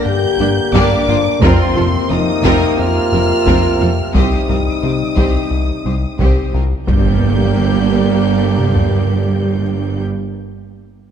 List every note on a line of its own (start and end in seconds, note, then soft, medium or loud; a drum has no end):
0.00 1.38 D3 medium
0.00 1.38 A#3 medium
0.06 0.26 G2 medium
0.06 0.73 G4 loud
0.06 0.73 G6 loud
0.39 0.47 G1 medium
0.39 0.60 G2 medium
0.39 0.48 G2 medium
0.39 0.48 A#3 medium
0.39 0.48 D4 medium
0.39 0.47 G4 medium
0.39 0.47 D5 medium
0.73 0.81 G1 loud
0.73 0.95 G2 loud
0.73 0.83 G2 loud
0.73 1.06 A#3 loud
0.73 1.06 D4 loud
0.73 1.43 D4 loud
0.73 1.06 G4 loud
0.73 1.06 D5 loud
0.73 1.42 D6 loud
0.73 taiko medium
1.07 1.15 G1 medium
1.07 1.29 G2 medium
1.07 1.17 G2 medium
1.07 1.15 A#3 medium
1.07 1.15 D4 medium
1.07 1.16 F4 medium
1.07 1.16 C5 loud
1.41 1.49 F1 loud
1.41 1.62 F2 loud
1.41 1.51 F2 loud
1.41 6.52 C3 loud
1.41 3.98 A#3 loud
1.41 1.74 C4 loud
1.41 2.09 C4 loud
1.41 1.74 F4 loud
1.41 1.74 A#4 loud
1.41 2.09 C6 loud
1.41 taiko loud
1.76 1.84 F1 medium
1.76 1.85 F2 medium
1.76 1.97 F2 medium
1.76 1.84 C4 medium
1.76 1.84 F4 medium
1.76 1.84 A4 medium
1.76 taiko low-mid medium
2.10 2.18 F1 medium
2.10 2.19 F2 medium
2.10 2.31 F3 medium
2.10 2.18 C4 medium
2.10 2.79 D#4 loud
2.10 2.18 F4 medium
2.10 2.18 A#4 medium
2.10 2.79 D#6 loud
2.44 2.52 F1 loud
2.44 2.53 F2 loud
2.44 2.65 F2 loud
2.44 2.76 C4 loud
2.44 2.76 F4 loud
2.44 2.76 A#4 loud
2.44 taiko medium
2.79 2.99 F2 medium
2.79 3.98 F4 loud
2.79 4.15 F6 loud
3.12 3.20 F1 medium
3.12 3.33 F2 medium
3.12 3.21 F2 medium
3.12 3.21 C4 medium
3.12 3.21 F4 medium
3.12 3.21 A#4 medium
3.46 3.54 F1 loud
3.46 3.55 F2 medium
3.46 3.67 F2 loud
3.46 3.79 C4 medium
3.46 3.79 F4 loud
3.46 3.79 A#4 medium
3.46 taiko medium
3.80 3.89 F1 medium
3.80 3.89 F2 medium
3.80 4.02 F2 medium
3.80 3.88 C4 medium
3.80 3.88 F4 medium
3.80 3.89 A4 medium
4.14 4.22 C2 medium
4.14 4.35 C2 loud
4.14 4.23 C2 medium
4.14 6.52 G3 medium
4.14 4.47 C4 medium
4.14 6.50 D#4 medium
4.14 4.47 G4 medium
4.14 4.46 C5 medium
4.14 6.50 D#6 loud
4.14 taiko loud
4.48 4.57 C2 medium
4.48 4.70 C2 medium
4.48 4.57 C2 medium
4.48 4.57 C4 medium
4.48 4.57 F4 medium
4.48 4.57 G4 medium
4.48 4.56 A#4 medium
4.48 taiko low-mid medium
4.82 4.91 C2 medium
4.82 5.04 C3 medium
4.82 4.91 C4 medium
4.82 4.90 G4 soft
4.82 4.91 G4 medium
4.82 4.91 C5 medium
5.16 5.24 C2 medium
5.16 5.25 C2 medium
5.16 5.37 C2 loud
5.16 5.49 C4 medium
5.16 5.49 G4 medium
5.16 5.49 C5 medium
5.16 taiko medium
5.51 5.71 C2 medium
5.85 5.93 C2 soft
5.85 6.06 C2 medium
5.85 5.94 C2 soft
5.85 5.93 C4 soft
5.85 5.93 G4 soft
5.85 5.94 G4 medium
5.85 5.94 C5 medium
6.19 6.27 C2 medium
6.19 6.28 C2 medium
6.19 6.40 C2 loud
6.19 6.51 C4 medium
6.19 6.51 G4 medium
6.19 6.51 C5 medium
6.19 taiko medium
6.53 6.61 C2 soft
6.53 6.62 C2 soft
6.53 6.74 C2 medium
6.53 6.62 C4 medium
6.53 6.62 F4 medium
6.53 6.62 G4 medium
6.53 6.62 A#4 medium
6.87 10.01 G1 medium
6.87 10.03 G2 medium
6.87 10.03 D3 medium
6.87 10.03 G3 medium
6.87 10.02 A#3 medium
6.87 10.03 A#3 medium
6.87 10.02 G4 medium
6.87 10.02 D5 medium
6.87 10.02 G6 medium
6.87 taiko loud
6.87 impact medium
8.58 taiko mid medium
8.76 taiko low medium